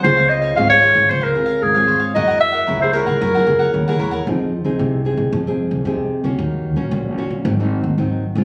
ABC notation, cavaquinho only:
X:1
M:4/4
L:1/16
Q:1/4=113
K:Fm
V:1 name="Cavaquinho"
[cdf] [df] z [df] [cdf]2 [cdf] [df] [cdf] [df] z [df]2 [df] [cdf] [df] | [_FBd_g] [Bdg] z [Bdg] [FBdg]2 [FBdg] [Bdg] [FBdg] [Bdg] z [Bdg]2 [Bdg] [FBdg] [Bdg] | z16 | z16 |]